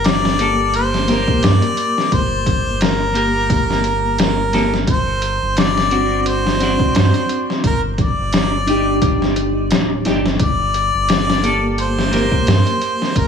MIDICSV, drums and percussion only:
0, 0, Header, 1, 2, 480
1, 0, Start_track
1, 0, Key_signature, -2, "minor"
1, 0, Tempo, 689655
1, 1477, Time_signature, 4, 2, 24, 8
1, 9239, End_track
2, 0, Start_track
2, 0, Title_t, "Drums"
2, 31, Note_on_c, 9, 42, 83
2, 39, Note_on_c, 9, 38, 108
2, 101, Note_off_c, 9, 42, 0
2, 109, Note_off_c, 9, 38, 0
2, 175, Note_on_c, 9, 38, 55
2, 245, Note_off_c, 9, 38, 0
2, 272, Note_on_c, 9, 42, 64
2, 341, Note_off_c, 9, 42, 0
2, 512, Note_on_c, 9, 42, 88
2, 582, Note_off_c, 9, 42, 0
2, 655, Note_on_c, 9, 38, 43
2, 725, Note_off_c, 9, 38, 0
2, 752, Note_on_c, 9, 42, 56
2, 760, Note_on_c, 9, 38, 37
2, 821, Note_off_c, 9, 42, 0
2, 830, Note_off_c, 9, 38, 0
2, 889, Note_on_c, 9, 36, 90
2, 958, Note_off_c, 9, 36, 0
2, 993, Note_on_c, 9, 42, 82
2, 1002, Note_on_c, 9, 38, 109
2, 1063, Note_off_c, 9, 42, 0
2, 1071, Note_off_c, 9, 38, 0
2, 1129, Note_on_c, 9, 42, 42
2, 1199, Note_off_c, 9, 42, 0
2, 1233, Note_on_c, 9, 42, 60
2, 1303, Note_off_c, 9, 42, 0
2, 1377, Note_on_c, 9, 38, 34
2, 1447, Note_off_c, 9, 38, 0
2, 1475, Note_on_c, 9, 36, 102
2, 1475, Note_on_c, 9, 42, 83
2, 1545, Note_off_c, 9, 36, 0
2, 1545, Note_off_c, 9, 42, 0
2, 1715, Note_on_c, 9, 36, 83
2, 1716, Note_on_c, 9, 42, 60
2, 1784, Note_off_c, 9, 36, 0
2, 1786, Note_off_c, 9, 42, 0
2, 1954, Note_on_c, 9, 42, 81
2, 1963, Note_on_c, 9, 38, 108
2, 2024, Note_off_c, 9, 42, 0
2, 2032, Note_off_c, 9, 38, 0
2, 2195, Note_on_c, 9, 42, 63
2, 2264, Note_off_c, 9, 42, 0
2, 2435, Note_on_c, 9, 36, 99
2, 2436, Note_on_c, 9, 42, 85
2, 2504, Note_off_c, 9, 36, 0
2, 2505, Note_off_c, 9, 42, 0
2, 2578, Note_on_c, 9, 38, 33
2, 2647, Note_off_c, 9, 38, 0
2, 2672, Note_on_c, 9, 42, 63
2, 2742, Note_off_c, 9, 42, 0
2, 2912, Note_on_c, 9, 42, 84
2, 2920, Note_on_c, 9, 38, 108
2, 2982, Note_off_c, 9, 42, 0
2, 2990, Note_off_c, 9, 38, 0
2, 3154, Note_on_c, 9, 42, 60
2, 3162, Note_on_c, 9, 38, 40
2, 3224, Note_off_c, 9, 42, 0
2, 3232, Note_off_c, 9, 38, 0
2, 3296, Note_on_c, 9, 38, 48
2, 3366, Note_off_c, 9, 38, 0
2, 3393, Note_on_c, 9, 36, 96
2, 3393, Note_on_c, 9, 42, 84
2, 3462, Note_off_c, 9, 42, 0
2, 3463, Note_off_c, 9, 36, 0
2, 3633, Note_on_c, 9, 42, 65
2, 3702, Note_off_c, 9, 42, 0
2, 3875, Note_on_c, 9, 42, 86
2, 3883, Note_on_c, 9, 38, 109
2, 3945, Note_off_c, 9, 42, 0
2, 3953, Note_off_c, 9, 38, 0
2, 4020, Note_on_c, 9, 38, 53
2, 4089, Note_off_c, 9, 38, 0
2, 4115, Note_on_c, 9, 42, 64
2, 4184, Note_off_c, 9, 42, 0
2, 4356, Note_on_c, 9, 42, 84
2, 4426, Note_off_c, 9, 42, 0
2, 4500, Note_on_c, 9, 38, 41
2, 4569, Note_off_c, 9, 38, 0
2, 4596, Note_on_c, 9, 42, 64
2, 4605, Note_on_c, 9, 38, 37
2, 4666, Note_off_c, 9, 42, 0
2, 4674, Note_off_c, 9, 38, 0
2, 4729, Note_on_c, 9, 36, 93
2, 4799, Note_off_c, 9, 36, 0
2, 4836, Note_on_c, 9, 42, 80
2, 4844, Note_on_c, 9, 38, 104
2, 4906, Note_off_c, 9, 42, 0
2, 4914, Note_off_c, 9, 38, 0
2, 4970, Note_on_c, 9, 42, 41
2, 5039, Note_off_c, 9, 42, 0
2, 5076, Note_on_c, 9, 42, 60
2, 5146, Note_off_c, 9, 42, 0
2, 5220, Note_on_c, 9, 38, 32
2, 5289, Note_off_c, 9, 38, 0
2, 5315, Note_on_c, 9, 36, 105
2, 5316, Note_on_c, 9, 42, 85
2, 5385, Note_off_c, 9, 36, 0
2, 5386, Note_off_c, 9, 42, 0
2, 5555, Note_on_c, 9, 36, 84
2, 5555, Note_on_c, 9, 42, 58
2, 5625, Note_off_c, 9, 36, 0
2, 5625, Note_off_c, 9, 42, 0
2, 5794, Note_on_c, 9, 42, 81
2, 5803, Note_on_c, 9, 38, 106
2, 5864, Note_off_c, 9, 42, 0
2, 5872, Note_off_c, 9, 38, 0
2, 6038, Note_on_c, 9, 42, 66
2, 6108, Note_off_c, 9, 42, 0
2, 6276, Note_on_c, 9, 36, 110
2, 6276, Note_on_c, 9, 42, 81
2, 6346, Note_off_c, 9, 36, 0
2, 6346, Note_off_c, 9, 42, 0
2, 6418, Note_on_c, 9, 38, 34
2, 6487, Note_off_c, 9, 38, 0
2, 6516, Note_on_c, 9, 42, 64
2, 6585, Note_off_c, 9, 42, 0
2, 6755, Note_on_c, 9, 42, 76
2, 6763, Note_on_c, 9, 38, 107
2, 6824, Note_off_c, 9, 42, 0
2, 6833, Note_off_c, 9, 38, 0
2, 6995, Note_on_c, 9, 42, 65
2, 7004, Note_on_c, 9, 38, 41
2, 7065, Note_off_c, 9, 42, 0
2, 7073, Note_off_c, 9, 38, 0
2, 7138, Note_on_c, 9, 38, 48
2, 7208, Note_off_c, 9, 38, 0
2, 7235, Note_on_c, 9, 42, 81
2, 7236, Note_on_c, 9, 36, 98
2, 7305, Note_off_c, 9, 36, 0
2, 7305, Note_off_c, 9, 42, 0
2, 7477, Note_on_c, 9, 42, 62
2, 7546, Note_off_c, 9, 42, 0
2, 7716, Note_on_c, 9, 42, 81
2, 7724, Note_on_c, 9, 38, 108
2, 7785, Note_off_c, 9, 42, 0
2, 7794, Note_off_c, 9, 38, 0
2, 7862, Note_on_c, 9, 38, 55
2, 7931, Note_off_c, 9, 38, 0
2, 7960, Note_on_c, 9, 42, 63
2, 8029, Note_off_c, 9, 42, 0
2, 8200, Note_on_c, 9, 42, 89
2, 8269, Note_off_c, 9, 42, 0
2, 8342, Note_on_c, 9, 38, 42
2, 8411, Note_off_c, 9, 38, 0
2, 8441, Note_on_c, 9, 42, 60
2, 8449, Note_on_c, 9, 38, 38
2, 8510, Note_off_c, 9, 42, 0
2, 8519, Note_off_c, 9, 38, 0
2, 8572, Note_on_c, 9, 36, 91
2, 8642, Note_off_c, 9, 36, 0
2, 8680, Note_on_c, 9, 42, 79
2, 8688, Note_on_c, 9, 38, 107
2, 8749, Note_off_c, 9, 42, 0
2, 8757, Note_off_c, 9, 38, 0
2, 8816, Note_on_c, 9, 42, 42
2, 8885, Note_off_c, 9, 42, 0
2, 8919, Note_on_c, 9, 42, 62
2, 8989, Note_off_c, 9, 42, 0
2, 9061, Note_on_c, 9, 38, 34
2, 9130, Note_off_c, 9, 38, 0
2, 9157, Note_on_c, 9, 36, 102
2, 9158, Note_on_c, 9, 42, 83
2, 9226, Note_off_c, 9, 36, 0
2, 9227, Note_off_c, 9, 42, 0
2, 9239, End_track
0, 0, End_of_file